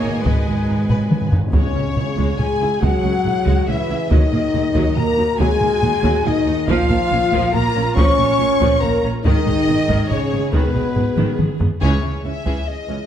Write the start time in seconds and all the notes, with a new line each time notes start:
Already playing: B2 D#3 A#3 G#4 C#5 D#5 G#5
0.02 G#1 G#2 D#4
0.10 G#2
0.17 G#2
0.24 G#1 G#2 G#3 B4, taiko
0.32 G#2
0.40 G#2
0.47 G#1 G#2 G#4
0.55 G#2
0.61 G#2
0.68 G#1 G#2 D#4
0.76 G#2
0.83 G#2
0.89 G#1 G#2 B4, taiko low-mid
0.99 G#2
1.06 G#2
1.11 G#2, taiko mid
1.22 G#2
1.29 G#1 G#2, taiko low
1.33 G#2 D#4
1.43 G#2
1.52 C#2 C#3 G#3 C#4 G#4 C#5, taiko
1.74 C#2 C#4, taiko low-mid
1.96 C#2 E4, taiko low-mid
2.17 C#2 G#3, taiko
2.38 C#2 G#3 C#4 G#4 G#5, taiko low-mid
2.60 C#2 E4
2.80 C#2 F#3 G#3 F#4 F#5, taiko
3.03 C#2 C#4, taiko low-mid
3.24 C#2 E4, taiko low-mid
3.45 C#2 G#3, taiko
3.67 C#2 E3 C#4 E4 E5, taiko low-mid
3.89 C#2 E4
4.10 D#2 D#3 F#3 D#4 D#5, taiko
4.32 D#2 A#3, taiko low-mid
4.53 D#2 D#4, taiko low-mid
4.74 D#2 F#3, taiko
4.95 D#2 A#3 F#4 A#4 A#5, taiko low-mid
5.17 D#2 D#4
5.39 D#2 F#3 G#3 G#4 G#5, taiko
5.60 D#2 A#3, taiko low-mid
5.82 D#2 D#4, taiko low-mid
6.03 D#2 F#3, taiko
6.24 D#2 D#3 A#3 D#4 D#5, taiko low-mid
6.46 D#2 D#4
6.68 A#1 A#2 F3 F4 F5, taiko
6.90 A#1 A#2 A#3, taiko low-mid
7.10 A#1 A#2 C#4, taiko low-mid
7.32 A#1 A#2 F3, taiko
7.52 A#1 A#2 A#3 A#4 A#5, taiko low-mid
7.74 A#1 A#2 C#4
7.96 A#1 A#2 F3 C#4 C#5 C#6, taiko
8.18 A#1 A#2 A#3, taiko low-mid
8.39 A#1 A#2 C#4, taiko low-mid
8.60 A#1 A#2 F3, taiko
8.82 A#1 A#2 A#3 A#4 A#5, taiko low-mid
9.03 A#1 A#2 C#4
9.24 G#1 G#2 D#3 D#4 G#4 D#5, taiko
9.46 G#1 G#2 G#3, taiko low-mid
9.67 G#1 G#2 B3, taiko low-mid
9.88 G#1 G#2 D#3, taiko
10.09 G#1 G#2 C#3 G#3 C#4 C#5, taiko low-mid
10.31 G#1 G#2 B3
10.52 G#1 G#2 B2 D#3 B3 B4, taiko
10.74 G#1 G#2 G#3, taiko low-mid
10.96 G#1 G#2 B3, taiko low-mid
11.17 G#1 G#2 D#3, taiko mid
11.38 G#1 G#2 G#3, taiko mid
11.60 G#1 G#2 B3, taiko low
11.81 C#2 E3 C#4 G#4 C#5, taiko
12.02 C#2 E3 C#4 E4
12.24 C#2 E3 C#4 E5
12.45 C#2 E3 C#4 G#4, taiko
12.68 D#5
12.88 C#2 E3 C#4